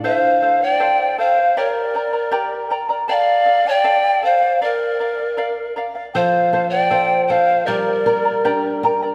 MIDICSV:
0, 0, Header, 1, 5, 480
1, 0, Start_track
1, 0, Tempo, 764331
1, 28, Time_signature, 2, 2, 24, 8
1, 5746, End_track
2, 0, Start_track
2, 0, Title_t, "Quena"
2, 0, Program_c, 0, 77
2, 37, Note_on_c, 0, 77, 89
2, 395, Note_on_c, 0, 79, 105
2, 405, Note_off_c, 0, 77, 0
2, 742, Note_off_c, 0, 79, 0
2, 746, Note_on_c, 0, 77, 93
2, 989, Note_on_c, 0, 73, 79
2, 998, Note_off_c, 0, 77, 0
2, 1083, Note_off_c, 0, 73, 0
2, 1083, Note_on_c, 0, 74, 79
2, 1704, Note_off_c, 0, 74, 0
2, 1941, Note_on_c, 0, 79, 89
2, 1971, Note_on_c, 0, 77, 97
2, 1977, Note_off_c, 0, 79, 0
2, 2304, Note_on_c, 0, 81, 106
2, 2313, Note_off_c, 0, 77, 0
2, 2328, Note_on_c, 0, 79, 115
2, 2334, Note_off_c, 0, 81, 0
2, 2661, Note_off_c, 0, 79, 0
2, 2668, Note_on_c, 0, 77, 102
2, 2887, Note_off_c, 0, 77, 0
2, 2906, Note_on_c, 0, 74, 84
2, 3597, Note_off_c, 0, 74, 0
2, 3851, Note_on_c, 0, 79, 84
2, 3873, Note_on_c, 0, 77, 91
2, 3879, Note_off_c, 0, 79, 0
2, 4190, Note_off_c, 0, 77, 0
2, 4213, Note_on_c, 0, 79, 116
2, 4552, Note_off_c, 0, 79, 0
2, 4564, Note_on_c, 0, 79, 90
2, 4585, Note_on_c, 0, 77, 98
2, 4591, Note_off_c, 0, 79, 0
2, 4809, Note_on_c, 0, 74, 82
2, 4819, Note_off_c, 0, 77, 0
2, 5538, Note_off_c, 0, 74, 0
2, 5746, End_track
3, 0, Start_track
3, 0, Title_t, "Charango"
3, 0, Program_c, 1, 24
3, 24, Note_on_c, 1, 69, 80
3, 26, Note_on_c, 1, 72, 82
3, 30, Note_on_c, 1, 77, 85
3, 256, Note_off_c, 1, 69, 0
3, 260, Note_off_c, 1, 72, 0
3, 264, Note_on_c, 1, 69, 54
3, 265, Note_off_c, 1, 77, 0
3, 268, Note_on_c, 1, 72, 61
3, 273, Note_on_c, 1, 77, 60
3, 376, Note_off_c, 1, 77, 0
3, 384, Note_on_c, 1, 77, 54
3, 385, Note_off_c, 1, 69, 0
3, 385, Note_off_c, 1, 72, 0
3, 393, Note_on_c, 1, 72, 41
3, 497, Note_off_c, 1, 72, 0
3, 501, Note_off_c, 1, 77, 0
3, 501, Note_on_c, 1, 69, 75
3, 504, Note_on_c, 1, 72, 80
3, 508, Note_on_c, 1, 77, 84
3, 734, Note_off_c, 1, 69, 0
3, 740, Note_off_c, 1, 72, 0
3, 742, Note_on_c, 1, 69, 62
3, 746, Note_off_c, 1, 77, 0
3, 748, Note_on_c, 1, 72, 62
3, 753, Note_on_c, 1, 77, 57
3, 856, Note_off_c, 1, 77, 0
3, 863, Note_off_c, 1, 69, 0
3, 863, Note_off_c, 1, 72, 0
3, 863, Note_on_c, 1, 77, 52
3, 870, Note_on_c, 1, 72, 39
3, 982, Note_off_c, 1, 72, 0
3, 984, Note_off_c, 1, 77, 0
3, 984, Note_on_c, 1, 67, 74
3, 985, Note_on_c, 1, 70, 75
3, 987, Note_on_c, 1, 74, 86
3, 987, Note_on_c, 1, 79, 82
3, 991, Note_on_c, 1, 82, 78
3, 1212, Note_off_c, 1, 79, 0
3, 1217, Note_off_c, 1, 70, 0
3, 1220, Note_off_c, 1, 74, 0
3, 1220, Note_on_c, 1, 79, 66
3, 1223, Note_off_c, 1, 67, 0
3, 1223, Note_off_c, 1, 82, 0
3, 1224, Note_on_c, 1, 70, 62
3, 1227, Note_on_c, 1, 74, 56
3, 1230, Note_on_c, 1, 82, 60
3, 1330, Note_off_c, 1, 82, 0
3, 1337, Note_off_c, 1, 74, 0
3, 1338, Note_off_c, 1, 70, 0
3, 1338, Note_on_c, 1, 82, 53
3, 1341, Note_off_c, 1, 79, 0
3, 1344, Note_on_c, 1, 74, 50
3, 1346, Note_on_c, 1, 70, 44
3, 1449, Note_off_c, 1, 74, 0
3, 1450, Note_off_c, 1, 70, 0
3, 1451, Note_off_c, 1, 82, 0
3, 1454, Note_on_c, 1, 67, 83
3, 1454, Note_on_c, 1, 79, 90
3, 1457, Note_on_c, 1, 70, 88
3, 1457, Note_on_c, 1, 74, 86
3, 1458, Note_on_c, 1, 82, 85
3, 1689, Note_off_c, 1, 79, 0
3, 1693, Note_off_c, 1, 70, 0
3, 1696, Note_off_c, 1, 74, 0
3, 1696, Note_on_c, 1, 79, 54
3, 1697, Note_off_c, 1, 82, 0
3, 1698, Note_off_c, 1, 67, 0
3, 1700, Note_on_c, 1, 70, 62
3, 1704, Note_on_c, 1, 74, 65
3, 1704, Note_on_c, 1, 82, 74
3, 1808, Note_off_c, 1, 82, 0
3, 1813, Note_off_c, 1, 74, 0
3, 1815, Note_on_c, 1, 82, 57
3, 1816, Note_off_c, 1, 70, 0
3, 1819, Note_off_c, 1, 79, 0
3, 1821, Note_on_c, 1, 74, 48
3, 1823, Note_on_c, 1, 70, 44
3, 1931, Note_off_c, 1, 70, 0
3, 1934, Note_off_c, 1, 74, 0
3, 1934, Note_on_c, 1, 69, 80
3, 1938, Note_off_c, 1, 82, 0
3, 1941, Note_on_c, 1, 74, 76
3, 1941, Note_on_c, 1, 77, 92
3, 2161, Note_off_c, 1, 69, 0
3, 2168, Note_off_c, 1, 74, 0
3, 2168, Note_on_c, 1, 69, 52
3, 2172, Note_off_c, 1, 77, 0
3, 2175, Note_on_c, 1, 74, 59
3, 2180, Note_on_c, 1, 77, 64
3, 2286, Note_off_c, 1, 77, 0
3, 2294, Note_off_c, 1, 69, 0
3, 2294, Note_off_c, 1, 74, 0
3, 2294, Note_on_c, 1, 77, 55
3, 2302, Note_on_c, 1, 74, 43
3, 2405, Note_off_c, 1, 74, 0
3, 2408, Note_off_c, 1, 77, 0
3, 2412, Note_on_c, 1, 69, 78
3, 2413, Note_on_c, 1, 74, 80
3, 2415, Note_on_c, 1, 77, 86
3, 2646, Note_off_c, 1, 69, 0
3, 2651, Note_off_c, 1, 74, 0
3, 2654, Note_on_c, 1, 69, 59
3, 2656, Note_off_c, 1, 77, 0
3, 2658, Note_on_c, 1, 74, 67
3, 2663, Note_on_c, 1, 77, 66
3, 2769, Note_off_c, 1, 77, 0
3, 2777, Note_off_c, 1, 69, 0
3, 2777, Note_off_c, 1, 74, 0
3, 2777, Note_on_c, 1, 77, 55
3, 2784, Note_on_c, 1, 74, 42
3, 2892, Note_off_c, 1, 74, 0
3, 2895, Note_off_c, 1, 77, 0
3, 2898, Note_on_c, 1, 70, 69
3, 2899, Note_on_c, 1, 74, 76
3, 2902, Note_on_c, 1, 77, 87
3, 3131, Note_off_c, 1, 70, 0
3, 3137, Note_off_c, 1, 74, 0
3, 3138, Note_off_c, 1, 77, 0
3, 3139, Note_on_c, 1, 70, 55
3, 3144, Note_on_c, 1, 74, 59
3, 3145, Note_on_c, 1, 77, 65
3, 3247, Note_off_c, 1, 77, 0
3, 3255, Note_on_c, 1, 77, 51
3, 3256, Note_off_c, 1, 74, 0
3, 3259, Note_off_c, 1, 70, 0
3, 3264, Note_on_c, 1, 74, 39
3, 3369, Note_off_c, 1, 74, 0
3, 3373, Note_off_c, 1, 77, 0
3, 3373, Note_on_c, 1, 70, 77
3, 3377, Note_on_c, 1, 74, 84
3, 3380, Note_on_c, 1, 77, 88
3, 3610, Note_off_c, 1, 70, 0
3, 3614, Note_off_c, 1, 74, 0
3, 3618, Note_on_c, 1, 70, 59
3, 3620, Note_off_c, 1, 77, 0
3, 3622, Note_on_c, 1, 74, 62
3, 3627, Note_on_c, 1, 77, 67
3, 3729, Note_off_c, 1, 77, 0
3, 3736, Note_on_c, 1, 77, 48
3, 3738, Note_off_c, 1, 74, 0
3, 3739, Note_off_c, 1, 70, 0
3, 3745, Note_on_c, 1, 74, 43
3, 3858, Note_off_c, 1, 77, 0
3, 3861, Note_off_c, 1, 74, 0
3, 3861, Note_on_c, 1, 69, 79
3, 3864, Note_on_c, 1, 72, 86
3, 3867, Note_on_c, 1, 77, 83
3, 4094, Note_off_c, 1, 69, 0
3, 4097, Note_off_c, 1, 72, 0
3, 4102, Note_on_c, 1, 69, 60
3, 4103, Note_off_c, 1, 77, 0
3, 4105, Note_on_c, 1, 72, 65
3, 4111, Note_on_c, 1, 77, 65
3, 4212, Note_off_c, 1, 77, 0
3, 4219, Note_off_c, 1, 72, 0
3, 4220, Note_on_c, 1, 77, 52
3, 4221, Note_off_c, 1, 69, 0
3, 4227, Note_on_c, 1, 72, 41
3, 4331, Note_off_c, 1, 72, 0
3, 4332, Note_off_c, 1, 77, 0
3, 4333, Note_on_c, 1, 69, 78
3, 4338, Note_on_c, 1, 72, 69
3, 4339, Note_on_c, 1, 77, 84
3, 4575, Note_off_c, 1, 69, 0
3, 4578, Note_off_c, 1, 72, 0
3, 4580, Note_off_c, 1, 77, 0
3, 4583, Note_on_c, 1, 69, 51
3, 4586, Note_on_c, 1, 72, 63
3, 4592, Note_on_c, 1, 77, 57
3, 4693, Note_off_c, 1, 77, 0
3, 4700, Note_on_c, 1, 77, 49
3, 4702, Note_off_c, 1, 69, 0
3, 4703, Note_off_c, 1, 72, 0
3, 4711, Note_on_c, 1, 72, 39
3, 4812, Note_off_c, 1, 72, 0
3, 4813, Note_off_c, 1, 77, 0
3, 4815, Note_on_c, 1, 67, 80
3, 4816, Note_on_c, 1, 79, 81
3, 4818, Note_on_c, 1, 70, 79
3, 4818, Note_on_c, 1, 74, 86
3, 4821, Note_on_c, 1, 82, 86
3, 5053, Note_off_c, 1, 70, 0
3, 5053, Note_off_c, 1, 79, 0
3, 5056, Note_off_c, 1, 74, 0
3, 5059, Note_off_c, 1, 67, 0
3, 5060, Note_off_c, 1, 82, 0
3, 5060, Note_on_c, 1, 79, 52
3, 5061, Note_on_c, 1, 70, 64
3, 5064, Note_on_c, 1, 74, 60
3, 5068, Note_on_c, 1, 82, 61
3, 5174, Note_off_c, 1, 82, 0
3, 5179, Note_off_c, 1, 74, 0
3, 5181, Note_off_c, 1, 79, 0
3, 5182, Note_off_c, 1, 70, 0
3, 5182, Note_on_c, 1, 82, 55
3, 5187, Note_on_c, 1, 74, 41
3, 5192, Note_on_c, 1, 70, 43
3, 5298, Note_off_c, 1, 70, 0
3, 5302, Note_off_c, 1, 74, 0
3, 5303, Note_off_c, 1, 82, 0
3, 5304, Note_on_c, 1, 67, 74
3, 5305, Note_on_c, 1, 70, 82
3, 5305, Note_on_c, 1, 79, 82
3, 5309, Note_on_c, 1, 74, 89
3, 5310, Note_on_c, 1, 82, 85
3, 5539, Note_off_c, 1, 79, 0
3, 5541, Note_off_c, 1, 70, 0
3, 5544, Note_off_c, 1, 67, 0
3, 5544, Note_off_c, 1, 74, 0
3, 5547, Note_off_c, 1, 82, 0
3, 5547, Note_on_c, 1, 79, 72
3, 5549, Note_on_c, 1, 70, 64
3, 5551, Note_on_c, 1, 74, 61
3, 5556, Note_on_c, 1, 82, 78
3, 5660, Note_off_c, 1, 82, 0
3, 5664, Note_off_c, 1, 74, 0
3, 5666, Note_off_c, 1, 79, 0
3, 5667, Note_off_c, 1, 70, 0
3, 5668, Note_on_c, 1, 82, 53
3, 5672, Note_on_c, 1, 74, 49
3, 5677, Note_on_c, 1, 70, 36
3, 5746, Note_off_c, 1, 70, 0
3, 5746, Note_off_c, 1, 74, 0
3, 5746, Note_off_c, 1, 82, 0
3, 5746, End_track
4, 0, Start_track
4, 0, Title_t, "Pan flute"
4, 0, Program_c, 2, 75
4, 32, Note_on_c, 2, 72, 82
4, 396, Note_on_c, 2, 74, 79
4, 405, Note_off_c, 2, 72, 0
4, 750, Note_off_c, 2, 74, 0
4, 753, Note_on_c, 2, 72, 74
4, 992, Note_on_c, 2, 70, 71
4, 1001, Note_off_c, 2, 72, 0
4, 1706, Note_off_c, 2, 70, 0
4, 1945, Note_on_c, 2, 74, 90
4, 2312, Note_off_c, 2, 74, 0
4, 2312, Note_on_c, 2, 74, 88
4, 2665, Note_off_c, 2, 74, 0
4, 2669, Note_on_c, 2, 72, 73
4, 2888, Note_off_c, 2, 72, 0
4, 2911, Note_on_c, 2, 70, 77
4, 3600, Note_off_c, 2, 70, 0
4, 3864, Note_on_c, 2, 72, 78
4, 4197, Note_off_c, 2, 72, 0
4, 4207, Note_on_c, 2, 74, 76
4, 4549, Note_off_c, 2, 74, 0
4, 4572, Note_on_c, 2, 72, 75
4, 4811, Note_on_c, 2, 70, 74
4, 4820, Note_off_c, 2, 72, 0
4, 5539, Note_off_c, 2, 70, 0
4, 5746, End_track
5, 0, Start_track
5, 0, Title_t, "Nylon-string guitar"
5, 0, Program_c, 3, 24
5, 3861, Note_on_c, 3, 53, 74
5, 4100, Note_on_c, 3, 69, 50
5, 4333, Note_off_c, 3, 69, 0
5, 4340, Note_on_c, 3, 72, 58
5, 4573, Note_off_c, 3, 72, 0
5, 4583, Note_on_c, 3, 69, 51
5, 4797, Note_off_c, 3, 53, 0
5, 4815, Note_off_c, 3, 69, 0
5, 4824, Note_on_c, 3, 55, 73
5, 5062, Note_on_c, 3, 70, 58
5, 5295, Note_off_c, 3, 70, 0
5, 5305, Note_on_c, 3, 62, 58
5, 5538, Note_off_c, 3, 62, 0
5, 5547, Note_on_c, 3, 70, 56
5, 5746, Note_off_c, 3, 55, 0
5, 5746, Note_off_c, 3, 70, 0
5, 5746, End_track
0, 0, End_of_file